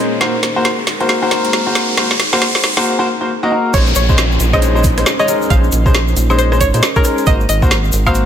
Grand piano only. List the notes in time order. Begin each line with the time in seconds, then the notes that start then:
Already playing: G#3 C#4 D#4 C5
0.21 A#3 F#4 C5
0.56 A#3 F#4 C5
1.00 A#3 F#4 C5
1.22 A#3 F#4 C5
1.31 A#3 F#4 C5
1.67 A#3 F#4 C5
1.97 A#3 F#4 C5
2.33 A#3 F#4 C5
2.77 A#3 F#4 C5
2.99 A#3 F#4 C5
3.21 A#3 F#4 C5
3.43 A#3 F#4 D#5
3.52 A#3 F#4 A#4
3.74 G#3 C#4 D#4 C5
4.09 G#3 C#4 D#4 C5
4.53 G#3 C#4 D#4 C5
4.75 G#3 C#4 D#4 C5
4.97 G#3 C#4 D#4 C5
5.19 G#3 C#4 D#4 C#5
5.28 G#3 C#4 D#4 A#4
5.50 G#3 C#4 D#4 C5
5.86 G#3 C#4 D#4 C5
6.30 G#3 C#4 D#4 C5
6.52 G#3 C#4 D#4 C5
6.74 G#3 C#4 D#4 C5
6.96 G#3 C#4 D#4 C#5
7.05 G#3 C#4 D#4 A#4
7.27 A#3 F#4 C5
7.62 A#3 F#4 C5
8.06 A#3 F#4 C5